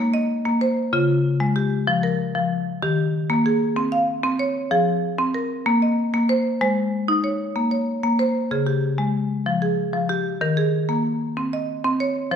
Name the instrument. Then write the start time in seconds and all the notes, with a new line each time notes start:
marimba
Already playing: C#5
0.00 A#3
0.14 D#5
0.45 A#3
0.61 C5
0.93 C#3 F4
1.40 G#3
1.56 G4
1.87 F3
2.03 A#4
2.35 F3
2.83 D#3 G4
3.30 A#3
3.46 G#4
3.76 C4
3.92 F5
4.24 C4
4.39 C#5
4.71 F3 G#4
5.18 C4
5.34 A#4
5.66 A#3
5.82 D#5
6.14 A#3
6.29 C5
6.61 G#3 C5
7.08 D#4
7.24 C#5
7.56 A#3
7.71 C#5
8.03 A#3
8.19 C5
8.51 C#3 G#4
8.67 G4
8.98 G#3
9.46 F3
9.62 G#4
9.93 F3
10.09 G4
10.41 D#3 A#4
10.57 G#4
10.89 A#3
11.37 C4
11.53 D#5
11.84 C4
12.00 C#5
12.31 F3 C5